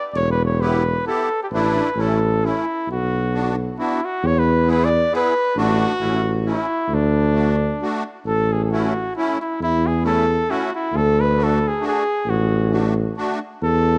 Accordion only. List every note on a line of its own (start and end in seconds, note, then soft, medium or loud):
0.61 0.83 B3 medium
0.61 0.83 E4 soft
0.61 0.83 G4 medium
1.07 1.29 B3 medium
1.07 1.29 E4 medium
1.07 1.29 G4 medium
1.53 1.89 A3 medium
1.53 1.89 D4 medium
1.53 1.90 E4 medium
1.97 2.19 A3 medium
1.97 2.19 C#4 medium
1.97 2.20 E4 medium
2.43 2.65 A3 medium
2.43 2.65 C#4 soft
2.43 2.65 E4 medium
3.33 3.56 B3 medium
3.33 3.56 D4 medium
3.33 3.56 F#4 medium
3.78 4.00 B3 medium
3.78 4.01 D4 medium
3.78 4.01 F#4 medium
4.66 4.89 B3 medium
4.66 4.89 E4 medium
4.66 4.89 G#4 medium
5.12 5.34 B3 medium
5.12 5.34 E4 medium
5.12 5.34 G#4 medium
5.57 5.93 A3 medium
5.57 5.92 D4 medium
5.57 5.93 F#4 medium
5.99 6.21 A3 medium
5.99 6.21 C#4 medium
5.99 6.22 E4 medium
6.45 6.66 A3 medium
6.45 6.66 C#4 medium
6.45 6.67 E4 medium
7.33 7.55 A3 medium
7.33 7.56 D4 medium
7.33 7.56 F#4 medium
7.81 8.03 A3 medium
7.81 8.03 D4 medium
7.81 8.03 F#4 medium
8.72 8.93 A3 medium
8.72 8.93 C#4 medium
8.72 8.93 E4 medium
9.17 9.38 A3 medium
9.17 9.38 C#4 medium
9.17 9.38 E4 medium
10.03 10.25 A3 medium
10.03 10.26 C#4 medium
10.03 10.25 E4 medium
10.49 10.70 A3 medium
10.49 10.70 C#4 medium
10.49 10.70 E4 medium
11.37 11.59 A3 medium
11.37 11.59 D4 soft
11.37 11.59 F#4 medium
11.81 12.03 A3 medium
11.81 12.03 D4 medium
11.81 12.04 F#4 medium
12.71 12.94 A3 medium
12.71 12.94 D4 soft
12.71 12.94 F#4 medium
13.17 13.39 A3 medium
13.17 13.39 D4 medium
13.17 13.39 F#4 medium